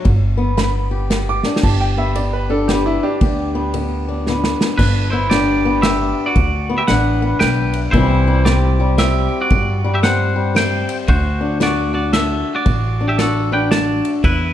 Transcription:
Already playing: steel-string acoustic guitar D4
0.05 upright bass G1, steel-string acoustic guitar G2, kick, ride
0.37 steel-string acoustic guitar B3
0.57 steel-string acoustic guitar D3, upright piano B5, snare, ride
0.91 steel-string acoustic guitar G4
1.10 steel-string acoustic guitar G2, snare, ride
1.29 upright piano D6
1.43 steel-string acoustic guitar D4, snare
1.56 snare
1.63 upright bass G1, steel-string acoustic guitar G2 G4, upright piano A5, kick, crash
1.81 upright piano G5
1.97 steel-string acoustic guitar B3, upright piano E5
2.15 steel-string acoustic guitar D3, upright piano D5, ride
2.33 upright piano B4
2.50 steel-string acoustic guitar D4, upright piano A4
2.68 steel-string acoustic guitar D3 B3, upright piano G4, snare, ride
2.86 upright piano E4
3.03 upright piano D4 G4
3.21 upright bass D2, steel-string acoustic guitar G2 G4, kick, ride
3.55 steel-string acoustic guitar B3
3.74 steel-string acoustic guitar D3, ride
4.09 steel-string acoustic guitar D4
4.27 steel-string acoustic guitar D3 B3, snare
4.44 snare
4.61 snare
4.78 upright bass G1, steel-string acoustic guitar G2, clean electric guitar D4 B4, kick, crash
5.10 steel-string acoustic guitar B3, clean electric guitar E4 C5
5.30 steel-string acoustic guitar D3 D4, clean electric guitar G4 D5, snare, ride
5.65 steel-string acoustic guitar B3
5.82 steel-string acoustic guitar D3, clean electric guitar G4 E5, snare, ride
6.26 clean electric guitar F#4 D5
6.36 upright bass D2, steel-string acoustic guitar G2, kick, ride
6.69 steel-string acoustic guitar B3
6.78 clean electric guitar G4 E5
6.87 upright bass A1, steel-string acoustic guitar D3 D4, clean electric guitar B4 F#5, snare, ride
7.22 steel-string acoustic guitar B3
7.39 upright bass B1, steel-string acoustic guitar D3, clean electric guitar B4 G5, snare, ride
7.73 ride
7.91 upright bass C2, steel-string acoustic guitar C3 E3, clean electric guitar E4 C5, kick, ride
7.96 steel-string acoustic guitar G3 C4 E4
8.28 steel-string acoustic guitar G3
8.45 steel-string acoustic guitar E3 C4, clean electric guitar G4 D5, snare, ride
8.80 steel-string acoustic guitar G3
8.98 steel-string acoustic guitar E3, clean electric guitar G4 E5, snare, ride
9.41 clean electric guitar F#4 D5
9.50 upright bass G2, steel-string acoustic guitar C3, kick, ride
9.84 steel-string acoustic guitar G3
9.94 clean electric guitar G4 E5
10.03 steel-string acoustic guitar E3 C4, clean electric guitar C5 F#5, snare, ride
10.36 steel-string acoustic guitar G3
10.55 steel-string acoustic guitar E3, clean electric guitar C5 G5, snare, ride
10.89 ride
11.08 upright bass D2, steel-string acoustic guitar D3, clean electric guitar F#4 C5, kick, ride
11.41 steel-string acoustic guitar D4
11.60 steel-string acoustic guitar A3 F#4, clean electric guitar F#4 D5, snare, ride
11.94 steel-string acoustic guitar D4, clean electric guitar F#4 D5
12.13 steel-string acoustic guitar A3, clean electric guitar A4 E5, snare, ride
12.55 clean electric guitar F#4 D5
12.66 upright bass A1, steel-string acoustic guitar D3, kick, ride
13.01 steel-string acoustic guitar D4
13.08 clean electric guitar G4 E5
13.18 steel-string acoustic guitar A3 F#4, clean electric guitar A4 F#5, snare, ride
13.52 steel-string acoustic guitar D4, clean electric guitar B4 G5
13.71 steel-string acoustic guitar A3, clean electric guitar D5 A5, snare, ride
14.05 ride
14.24 upright bass E2, steel-string acoustic guitar E2, clean electric guitar E4 B4, kick, ride

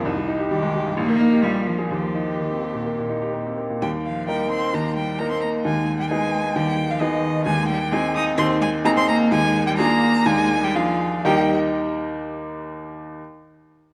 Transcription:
0.05 grand piano C2, violin D#4
0.16 grand piano G3
0.28 grand piano D#4
0.39 grand piano G4
0.50 cello D#3, grand piano G3, violin G4
0.62 grand piano G#3
0.74 grand piano G3
0.86 grand piano G2
0.97 grand piano A#1, cello A#3, violin D#4
1.09 grand piano A#3
1.20 grand piano D#4
1.32 grand piano G4
1.43 grand piano A#1, cello G3, violin F4
1.55 grand piano A#3
1.66 cello F3, grand piano D4
1.78 grand piano G#4
1.91 grand piano D#2, cello F3, violin G4
2.02 grand piano A#3
2.15 grand piano D#4
2.27 grand piano G4
2.38 cello D#3, grand piano A#3
2.51 grand piano C4
2.62 grand piano A#3
2.74 grand piano A#2
2.86 grand piano A#3
2.98 grand piano A#2
3.09 grand piano D#4
3.22 grand piano G4
3.34 grand piano A#3
3.46 grand piano C4
3.58 grand piano A#3
3.70 grand piano A#2
3.81 grand piano D#2 D#3, cello G3, violin G5
4.04 cello F3, violin F5
4.28 cello G3, grand piano A#3 D#4 A#4, violin G5
4.51 cello C4, violin C6
4.74 grand piano D#2 D#3, cello A#3, violin A#5
4.96 cello G3, violin G5
5.19 grand piano A#3 D#4 A#4, cello A#3, violin A#5
5.31 cello C4, violin C6
5.41 cello A#3, violin A#5
5.64 grand piano D#2 D#3, cello G#3, violin G#5
5.99 cello G3, violin G5
6.10 cello G#3, grand piano B3 D#4 G#4, violin G#5
6.56 grand piano D#2 D#3, cello G3, violin G5
6.90 cello F3, violin F5
7.00 cello D#3, grand piano B3 D#4 G#4, violin D#5
7.45 grand piano D#2 D#3, cello G#3, violin G#5
7.69 cello G3, violin G5
7.91 cello G#3, grand piano C4 D#4 G#4, violin G#5
8.15 cello D#4, violin D#6
8.38 grand piano D#2 D#3, cello C4, violin C6
8.61 cello G#3, violin G#5
8.84 cello A#3, grand piano C4 D#4 G#4, violin A#5
8.96 cello C4, violin C6
9.08 cello A#3, violin A#5
9.31 grand piano D#2 D#3, cello G#3, violin G#5
9.67 cello G3, violin G5
9.78 cello A#3, grand piano D4 F4 G#4, violin A#5
10.26 grand piano D#2 D#3, cello G#3, violin G#5
10.62 cello G3, violin G5
10.75 cello F3, grand piano D4 F4 G#4, violin F5
11.25 grand piano D#2 D#3 D#4 G4 A#4 G5, cello G3, violin G5

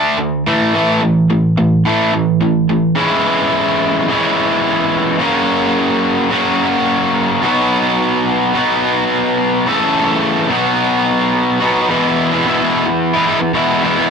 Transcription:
Already playing: overdriven electric guitar D3 A3 D4
0.18 overdriven electric guitar D3 A3
0.47 overdriven electric guitar A2 E3 A3
0.74 overdriven electric guitar A2 E3 A3
1.02 overdriven electric guitar A2 E3
1.30 overdriven electric guitar A2 E3
1.58 overdriven electric guitar A2 E3
1.85 overdriven electric guitar A2 E3 A3
2.13 overdriven electric guitar A2 E3
2.41 overdriven electric guitar A2 E3
2.70 overdriven electric guitar A2 E3
2.96 overdriven electric guitar C#3 E3 G#3 C#4 E4
4.08 overdriven electric guitar C#3 E3 G#3 C#4 E4
5.19 overdriven electric guitar C#3 F#3 A#3 C#4 F#4
6.31 overdriven electric guitar C#3 F#3 A#3 C#4 F#4
7.42 overdriven electric guitar B2 F#3 B3 D#4 F#4
8.54 overdriven electric guitar B2 F#3 B3 D#4 F#4
9.66 overdriven electric guitar C#3 E3 A3 C#4 A4
10.49 overdriven electric guitar B2 F#3 B3 D#4 F#4
11.61 overdriven electric guitar B2 F#3 B3 D#4 F#4
11.89 overdriven electric guitar E2 B2 E3 G#3 B3 E4
12.31 overdriven electric guitar E3 G#3 B3 E4
12.45 overdriven electric guitar E2 B2 E3 G#3 B3 E4
12.59 overdriven electric guitar E3 G#3 B3 E4
12.86 muted overdriven electric guitar stroke
13.14 overdriven electric guitar E3 G#3 B3 E4
13.27 overdriven electric guitar E3 G#3 B3 E4
13.40 muted overdriven electric guitar stroke
13.53 overdriven electric guitar E2 B2 E3 G#3 B3 E4
13.83 overdriven electric guitar E3 G#3 B3 E4
13.97 overdriven electric guitar E3 G#3 B3 E4

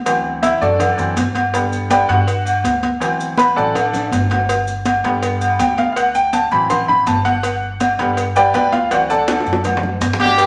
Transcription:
Already playing: upright bass D2
0.06 upright piano E3 F#3 C4, cowbell, high conga, low agogo, maracas
0.25 high conga
0.43 upright piano E4 E5, cowbell, high conga, low timbale, low agogo, maracas
0.61 upright bass F#2, upright piano D4 F#4 A4 D5, maracas
0.80 cowbell, high conga, low conga, low agogo, maracas
0.98 upright bass F#2, upright piano E3 F#3 C4, high conga, maracas
1.17 upright bass G2, cowbell, high conga, low timbale, low agogo, maracas
1.35 cowbell, high conga, low agogo, maracas
1.53 upright piano D3 G3 B3, cowbell, high conga, low agogo, maracas
1.72 high conga, maracas
1.90 upright piano G4 B4 D5 G5, cowbell, high conga, low timbale, low agogo, maracas
2.08 upright bass G2, upright piano D3 G3 B3 F#4 F#5, cowbell, high conga, low agogo, maracas
2.28 cowbell, high conga, maracas
2.46 high conga, low agogo, maracas
2.64 upright bass D2, cowbell, high conga, low timbale, low agogo, maracas
2.83 cowbell, high conga, maracas
3.00 upright piano E3 F#3 C4, cowbell, high conga, low agogo, maracas
3.19 high conga, maracas
3.38 upright piano B4 B5, cowbell, high conga, low timbale, low agogo, maracas
3.56 upright bass A1, upright piano E3 F#3 C4 A4 D5 F#5 A5, maracas
3.75 cowbell, high conga, low conga, high timbale, low agogo, maracas
3.93 high conga, low conga, high timbale, maracas
4.12 upright bass G1, cowbell, high conga, low timbale, low agogo, maracas
4.30 cowbell, high conga, low timbale, low agogo, maracas
4.49 cowbell, high conga, low agogo, maracas
4.67 high conga, maracas
4.85 cowbell, high conga, low timbale, low agogo, maracas
5.04 upright bass G2, upright piano D3 G3 B3, cowbell, high conga, low agogo, maracas
5.23 cowbell, high conga, maracas
5.41 high conga, low agogo, maracas
5.59 upright bass D2, upright piano G5, cowbell, high conga, low timbale, low agogo, maracas
5.78 upright piano F5, cowbell, high conga, maracas
5.92 upright piano F5
5.96 upright piano F#5, cowbell, high conga, low agogo, maracas
6.15 upright piano G5, high conga, maracas
6.33 upright piano A5, cowbell, high conga, low timbale, low agogo, maracas
6.51 upright bass A1, upright piano E3 F#3 C4 B5, maracas
6.70 upright piano C6, cowbell, high conga, low conga, low agogo, maracas
6.88 upright bass A1, upright piano B5, high conga, low conga
7.07 upright bass G1, upright piano A5, cowbell, high conga, low timbale, low agogo, maracas
7.25 upright piano F#5, cowbell, high conga, low agogo, maracas
7.43 cowbell, high conga, low agogo, maracas
7.63 high conga
7.80 cowbell, high conga, low timbale, low agogo, maracas
7.99 upright bass G2, upright piano D3 G3 B3, cowbell, high conga, low agogo, maracas
8.17 cowbell, high conga, maracas
8.36 upright piano G4 B4 D5 G5, high conga, low agogo, maracas
8.54 upright bass D2, upright piano B4 D5 G5 B5, cowbell, high conga, low timbale, low agogo, maracas
8.72 upright piano F4 F5, cowbell, high conga, maracas
8.91 upright piano E3 F#3 C4 F#4 C5 D5 F#5, cowbell, high conga, low agogo, maracas
9.09 upright piano A4 D5 F#5 A5, high conga, maracas
9.28 cowbell, high bongo, high conga, high timbale, low agogo, maracas
9.40 high bongo, high timbale
9.46 upright bass F#2, maracas
9.53 high bongo
9.64 cowbell, high conga, low conga, low timbale, low agogo, maracas
9.77 low bongo, low timbale
9.83 high conga, low conga
9.89 low timbale
10.01 upright bass G2, cowbell, low bongo, high conga, low agogo, maracas
10.13 low bongo
10.20 trumpet section D4 G4, cowbell, high conga, low agogo, maracas
10.26 low bongo, low timbale
10.38 upright piano G3 G4 G5, cowbell, low agogo, maracas

